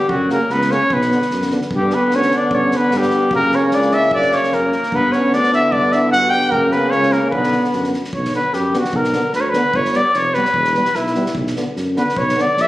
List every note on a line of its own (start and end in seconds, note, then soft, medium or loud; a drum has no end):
0.00 0.15 G3 medium
0.00 0.10 G4 medium
0.09 0.32 F#2 loud
0.09 0.30 F#4 medium
0.09 kick medium
0.13 0.31 F#3 medium
0.29 0.39 C#3 medium
0.29 0.37 A#3 medium
0.29 0.53 A#3 medium
0.29 0.53 A#4 medium
0.29 snare soft
0.50 0.72 C#2 medium
0.50 0.75 B3 medium
0.50 0.73 B4 medium
0.50 snare soft
0.61 snare soft
0.70 0.79 C#3 medium
0.70 0.78 A#3 medium
0.70 0.95 C#4 medium
0.70 0.95 C#5 loud
0.70 snare soft
0.90 1.14 B1 medium
0.90 1.52 B3 medium
0.90 1.53 B4 medium
0.90 kick medium
1.01 snare soft
1.10 1.20 D3 medium
1.10 1.18 B3 medium
1.10 snare soft
1.22 snare soft
1.31 1.54 F#2 medium
1.31 snare soft
1.42 snare soft
1.50 1.59 D3 medium
1.50 1.59 B3 medium
1.50 snare soft
1.62 snare soft
1.71 1.94 G2 loud
1.71 3.29 D3 medium
1.71 1.96 G3 medium
1.71 3.33 B3 medium
1.71 kick medium
1.76 1.96 G4 medium
1.90 2.17 B4 medium
1.90 snare soft
1.94 2.16 B3 medium
2.11 2.34 D2 medium
2.11 2.36 C#4 medium
2.11 snare soft
2.16 2.38 C#5 medium
2.22 snare soft
2.31 2.56 D4 medium
2.31 snare soft
2.37 2.56 D5 medium
2.51 2.74 G2 medium
2.51 2.75 C#4 medium
2.51 2.78 C#5 medium
2.51 kick medium
2.71 2.96 B3 medium
2.71 snare soft
2.76 2.99 B4 medium
2.91 3.13 G2 loud
2.91 3.32 G3 medium
2.91 snare soft
2.98 3.35 G4 loud
3.02 snare soft
3.10 snare soft
3.31 3.54 F#2 medium
3.31 4.73 C#3 medium
3.31 4.95 A#3 medium
3.31 3.55 A#3 medium
3.31 kick medium
3.35 3.56 A#4 loud
3.52 3.76 C#4 medium
3.52 3.76 C#5 medium
3.52 snare soft
3.71 3.95 C#2 medium
3.71 3.97 D4 medium
3.71 3.95 D5 loud
3.71 snare soft
3.82 snare soft
3.91 4.13 E5 loud
3.91 snare soft
3.96 4.14 E4 medium
4.11 4.35 F#2 loud
4.11 4.35 D5 loud
4.11 kick medium
4.16 4.38 D4 medium
4.22 snare soft
4.32 4.55 C#5 medium
4.32 snare soft
4.37 4.56 C#4 medium
4.43 snare soft
4.52 4.75 F#2 medium
4.52 4.96 A#3 medium
4.52 4.97 A#4 medium
4.52 snare soft
4.72 snare soft
4.83 snare soft
4.92 5.14 G2 loud
4.92 6.55 D3 medium
4.92 6.54 B3 medium
4.92 5.18 B3 medium
4.92 5.14 B4 loud
4.92 kick medium
5.12 5.36 C#4 medium
5.12 5.35 C#5 medium
5.12 snare soft
5.33 5.55 D2 medium
5.33 5.53 D4 medium
5.33 5.53 D5 loud
5.33 snare soft
5.43 snare soft
5.53 5.75 E4 medium
5.53 5.73 E5 loud
5.53 snare soft
5.72 5.94 G2 medium
5.72 5.96 D4 medium
5.72 5.94 D5 loud
5.72 kick medium
5.92 6.13 E4 medium
5.92 6.11 E5 medium
5.92 snare soft
6.12 6.34 G2 loud
6.12 6.35 F#4 medium
6.12 6.31 F#5 loud
6.12 snare soft
6.24 snare soft
6.30 6.54 G4 medium
6.30 6.52 G5 loud
6.30 snare soft
6.50 6.75 F#2 loud
6.50 7.34 C#3 medium
6.50 7.36 A#3 medium
6.50 6.74 A#3 medium
6.50 6.74 A#4 loud
6.50 kick medium
6.72 6.94 B3 medium
6.72 6.92 B4 medium
6.72 snare soft
6.91 7.15 C#2 medium
6.91 7.14 C#4 loud
6.91 7.14 C#5 loud
6.91 snare soft
7.03 snare soft
7.12 7.32 A#3 medium
7.12 7.30 A#4 medium
7.12 snare soft
7.31 7.55 B1 loud
7.31 7.97 D3 medium
7.31 7.89 B3 medium
7.31 7.98 B3 medium
7.31 7.88 B4 loud
7.31 kick medium
7.43 snare soft
7.52 snare soft
7.64 snare soft
7.73 7.95 F#2 medium
7.73 snare soft
7.84 snare soft
7.93 snare soft
8.04 snare soft
8.13 8.36 B1 medium
8.13 8.32 C#5 medium
8.13 kick medium
8.25 snare soft
8.33 8.41 D3 soft
8.33 8.42 B3 soft
8.33 8.56 B4 medium
8.33 snare soft
8.53 8.75 F#2 medium
8.53 8.80 G4 medium
8.53 snare soft
8.73 8.81 D3 medium
8.73 8.82 B3 medium
8.73 snare soft
8.78 8.98 F#4 medium
8.84 snare soft
8.93 9.15 B1 medium
8.93 9.35 A#4 medium
8.93 kick medium
9.04 snare soft
9.12 9.21 D3 medium
9.12 9.23 B3 medium
9.12 snare soft
9.33 9.56 D2 medium
9.33 9.42 B4 medium
9.33 snare soft
9.41 9.51 C#5 medium
9.50 9.77 B4 medium
9.50 snare soft
9.54 9.62 D3 medium
9.54 9.63 B3 medium
9.74 9.96 G1 loud
9.74 9.97 C#5 medium
9.74 kick medium
9.85 snare soft
9.93 10.03 G3 medium
9.93 10.03 B3 medium
9.93 10.17 D5 loud
9.93 snare soft
10.13 10.36 F1 medium
10.13 10.36 C#5 medium
10.13 snare soft
10.34 10.43 G3 medium
10.34 10.43 B3 medium
10.34 10.98 B4 loud
10.34 snare soft
10.45 snare soft
10.54 10.76 E1 medium
10.54 kick medium
10.64 snare soft
10.74 10.83 G3 medium
10.74 10.83 B3 medium
10.74 snare soft
10.85 snare soft
10.94 11.17 B1 medium
10.94 11.36 E4 medium
10.94 snare soft
11.07 snare soft
11.15 11.24 G3 medium
11.15 11.23 B3 soft
11.15 snare soft
11.26 snare soft
11.34 11.57 B1 medium
11.34 kick medium
11.47 snare soft
11.55 11.64 D3 medium
11.55 11.64 B3 medium
11.55 snare soft
11.76 11.98 F#2 medium
11.76 snare soft
11.96 12.04 D3 medium
11.96 12.05 B3 medium
11.96 12.20 B4 medium
11.96 snare soft
12.09 snare soft
12.16 12.38 B1 medium
12.16 12.43 C#5 medium
12.16 kick medium
12.29 snare soft
12.36 12.45 D3 medium
12.36 12.45 B3 medium
12.36 snare soft
12.41 12.63 D5 medium
12.56 12.68 A#1 medium
12.56 snare soft
12.62 12.68 E5 loud